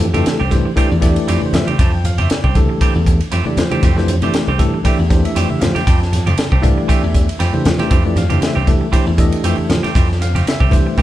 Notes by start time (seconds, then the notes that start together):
Already playing: F2
0.00 muted clean electric guitar stroke, hi-hat pedal, ride, low conga
0.13 F2 E3 A3 C4 D4 G4 A4, ride, high conga
0.26 muted slap bass stroke, snare, hi-hat pedal, ride
0.40 C2 A3 C4 G4
0.50 E3 A3 D4 G4 C5, kick, snare, hi-hat pedal, ride, low conga
0.66 muted clean electric guitar stroke
0.76 E3 A3 C4 D4 G4 D5, muted slap bass stroke, kick, hi-hat pedal, ride
0.92 E2
1.01 E3 A3 D4 G4 D5, muted clean electric guitar stroke, kick, snare, hi-hat pedal, ride
1.16 ride
1.28 F2 E3 A3 C4 G4, hi-hat pedal, ride
1.42 muted clean electric guitar stroke, muted slap bass stroke, high conga
1.46 C5
1.53 F3 E5, muted clean electric guitar stroke, snare, hi-hat pedal, ride, high conga, low conga
1.67 A3 C4 G4 G5, muted slap bass stroke, ride, high conga
1.79 F2 E3 A3 C4 G4 A5, kick, hi-hat pedal, ride, low conga
1.93 G5, muted clean electric guitar stroke
2.04 F5, muted clean electric guitar stroke, hi-hat pedal, ride, low conga
2.18 F2 A3 C4 G4 E5, ride, high conga
2.30 D5, muted clean electric guitar stroke, muted slap bass stroke, snare, hi-hat pedal, ride
2.44 C2 A3 C4 G4, kick
2.55 E3 A3 D4 G4 A4, kick, snare, hi-hat pedal, ride, high conga, low conga
2.69 muted clean electric guitar stroke
2.81 E3 A3 C4 G4, muted slap bass stroke, kick, hi-hat pedal, ride
2.95 E2, muted clean electric guitar stroke
3.06 muted clean electric guitar stroke, kick, hi-hat pedal, ride
3.20 ride
3.32 F2 E3 A3 C4 G4, hi-hat pedal, ride
3.45 E3 A3 D4 G4 D5, muted clean electric guitar stroke, muted slap bass stroke, high conga
3.57 F3, muted clean electric guitar stroke, snare, hi-hat pedal, ride, high conga, low conga
3.70 E3 A3 C4 D4 G4 C5, muted slap bass stroke, ride, high conga
3.83 F2 E3 A3 C4 G4, kick, hi-hat pedal, ride
3.96 E3 A3 D4 G4 C5, muted clean electric guitar stroke, snare
4.08 muted clean electric guitar stroke, hi-hat pedal, ride, low conga
4.22 F2 E3 A3 C4 D4 G4 D5, ride, high conga
4.33 muted slap bass stroke, muted clean electric guitar stroke, snare, hi-hat pedal, ride
4.47 C2 A3 C4 G4
4.58 E3 A3 D4 G4 A4, kick, snare, hi-hat pedal, ride, low conga
4.74 muted clean electric guitar stroke
4.83 E3 A3 C4 D4 G4 D5 E5, muted slap bass stroke, kick, hi-hat pedal, ride
4.99 E2 G4, muted clean electric guitar stroke
5.09 E3 A3 D4 G4 C5, muted clean electric guitar stroke, kick, snare, hi-hat pedal, ride
5.25 E5, ride
5.35 F2 E3 A3 C4 G4 D5, hi-hat pedal, ride
5.50 E5, muted clean electric guitar stroke, muted slap bass stroke, high conga
5.60 F3 F5, muted clean electric guitar stroke, snare, hi-hat pedal, ride, high conga, low conga
5.75 A3 C4 G4 G5, muted slap bass stroke, snare, ride, high conga
5.87 F2 E3 A3 C4 G4 A5, kick, hi-hat pedal, ride
6.01 muted clean electric guitar stroke, snare
6.12 muted clean electric guitar stroke, snare, hi-hat pedal, ride, low conga
6.26 F2 A3 C4 G4, ride, high conga
6.38 muted clean electric guitar stroke, muted slap bass stroke, snare, hi-hat pedal, ride
6.52 C2 A3 C4 G4, kick
6.62 E3 A3 D4 G4 D5 F5, kick, hi-hat pedal, ride, low conga
6.78 muted clean electric guitar stroke
6.88 E3 A3 C4 G4 E5, muted slap bass stroke, kick, hi-hat pedal, ride
7.03 E2, muted clean electric guitar stroke
7.14 muted clean electric guitar stroke, kick, snare, hi-hat pedal, ride
7.29 ride
7.39 F2 E3 A3 C4 G4 G5, hi-hat pedal, ride
7.53 E3 A3 D4 G4 C5, muted clean electric guitar stroke, muted slap bass stroke, high conga
7.65 F3, muted clean electric guitar stroke, snare, hi-hat pedal, ride, high conga, low conga
7.78 E3 A3 C4 D4 G4 C5, muted slap bass stroke, snare, ride, high conga
7.90 F2 E3 A3 C4 G4, kick, hi-hat pedal, ride
8.05 E3 A3 D4 G4 D5, muted clean electric guitar stroke
8.16 F5, muted clean electric guitar stroke, snare, hi-hat pedal, ride, low conga
8.30 F2 E3 A3 C4 D4 G4 C5, ride, high conga
8.41 muted clean electric guitar stroke, muted slap bass stroke, snare, hi-hat pedal, ride
8.45 E5
8.55 C2 A3 C4 G4
8.67 E3 A3 D4 G4 A4, kick, snare, hi-hat pedal, ride, low conga
8.81 muted clean electric guitar stroke
8.92 E3 A3 C4 D4 G4 C5, muted slap bass stroke, kick, hi-hat pedal, ride
9.06 E2, muted clean electric guitar stroke
9.17 E3 A3 D4 G4 A4 D#5, muted clean electric guitar stroke, kick, hi-hat pedal, ride
9.32 ride
9.44 F2 E3 A3 C4 G4, hi-hat pedal, ride
9.48 E5
9.58 muted slap bass stroke, muted clean electric guitar stroke, high conga
9.69 F3, muted clean electric guitar stroke, snare, hi-hat pedal, ride, high conga, low conga
9.83 A3 C4 G4, muted slap bass stroke, snare, ride, high conga
9.95 F2 E3 A3 C4 G4, kick, hi-hat pedal, ride, low conga
10.09 muted clean electric guitar stroke, snare
10.21 F5, muted clean electric guitar stroke, snare, hi-hat pedal, ride
10.34 F2 A3 C4 G4, ride, high conga
10.46 E5, muted slap bass stroke, muted clean electric guitar stroke, snare, hi-hat pedal, ride
10.60 C2 A3 C4 G4, kick
10.71 E3 A3 D4 G4 C5, kick, snare, hi-hat pedal, ride, high conga, low conga
10.87 muted clean electric guitar stroke
10.98 E3 A3 C4 G4, muted slap bass stroke, kick, hi-hat pedal, high tom